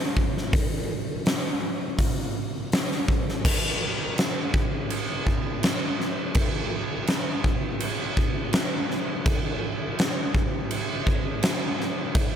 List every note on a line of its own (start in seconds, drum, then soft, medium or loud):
0.17 kick medium
0.37 snare soft
0.53 kick loud
0.53 open hi-hat medium
1.26 snare loud
1.26 open hi-hat medium
1.99 kick medium
1.99 open hi-hat medium
2.72 snare loud
2.72 open hi-hat medium
2.92 snare soft
3.08 kick medium
3.29 snare soft
3.45 kick loud
3.45 crash loud
3.45 crash medium
4.18 snare loud
4.18 crash medium
4.54 kick medium
4.90 crash medium
5.27 kick medium
5.63 snare loud
5.63 crash medium
6.01 snare soft
6.35 kick loud
6.35 crash medium
7.07 snare medium
7.07 crash medium
7.44 kick medium
7.80 crash medium
8.17 kick medium
8.53 snare loud
8.53 crash medium
8.91 snare soft
9.26 kick loud
9.26 crash medium
9.99 snare loud
9.99 crash medium
10.35 kick medium
10.71 crash medium
11.07 kick medium
11.43 snare loud
11.43 crash medium
11.81 snare soft
12.15 kick loud
12.15 crash medium